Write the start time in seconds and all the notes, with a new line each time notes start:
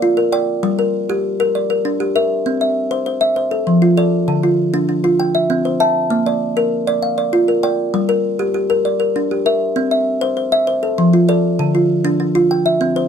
Already playing: D5 F5
0.02 F4
0.17 A#4
0.32 D5 G5
0.63 G3
0.79 A#4
1.09 G4
1.40 A#4
1.55 D5
1.70 A#4
1.85 D4
2.00 G4
2.16 A#4 E5
2.46 C4
2.61 E5
2.91 C5
3.06 C5
3.21 E5
3.36 C5
3.51 A4
3.67 F3
3.82 F4
3.97 A4 D5
4.28 D3
4.43 F4
4.74 D4
4.89 D4
5.04 F4
5.20 G5
5.35 E5
5.50 C4
5.65 C5
5.80 E5 A5
6.10 A#3
6.26 D5
6.57 A#4
6.87 D5
7.03 F5
7.18 D5
7.33 F4
7.48 A#4
7.63 D5 G5
7.94 G3
8.09 A#4
8.39 G4
8.54 G4
8.70 A#4
8.85 D5
9.00 A#4
9.16 D4
9.31 G4
9.46 A#4 E5
9.76 C4
9.91 E5
10.21 C5
10.37 C5
10.52 E5
10.67 C5
10.83 A4
10.98 F3
11.13 F4
11.29 A4 D5
11.59 D3
11.75 F4
12.05 D4
12.20 D4
12.35 F4
12.51 G5
12.66 E5
12.81 C4
12.96 C5